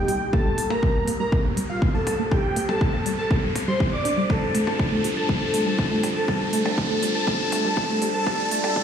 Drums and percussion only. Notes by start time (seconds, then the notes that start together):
0.08 open hi-hat
0.33 kick, percussion blips
0.58 open hi-hat
0.70 percussion blips
0.83 kick
1.08 open hi-hat
1.32 kick
1.57 open hi-hat
1.82 kick
2.07 open hi-hat, percussion blips
2.31 kick, percussion blips
2.56 open hi-hat
2.69 percussion blips
2.81 kick
3.06 open hi-hat
3.31 kick
3.56 open hi-hat, percussion blips
3.80 kick
4.05 open hi-hat
4.30 kick, percussion blips
4.55 open hi-hat
4.67 percussion blips
4.79 kick
5.04 open hi-hat
5.29 kick
5.54 open hi-hat
5.79 kick
6.03 open hi-hat, percussion blips
6.28 kick, percussion blips
6.53 open hi-hat
6.65 percussion blips
6.78 kick
7.03 open hi-hat
7.27 kick
7.52 open hi-hat, percussion blips
7.77 kick
8.02 open hi-hat
8.27 kick, percussion blips
8.51 open hi-hat
8.64 percussion blips
8.76 kick